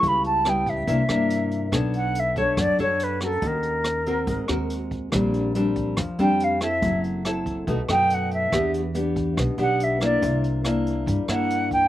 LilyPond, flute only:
\new Staff \with { instrumentName = "Flute" } { \time 4/4 \key b \minor \tempo 4 = 141 b''8 a''8 g''8 e''2~ e''8 | r8 fis''8 e''8 cis''8 d''8 cis''8 b'8 a'8 | bes'2. r4 | r2 r8 g''8 f''8 e''8~ |
e''8 r2 g''8 fis''8 e''8~ | e''8 r2 fis''8 e''8 d''8~ | d''8 r2 fis''4 g''8 | }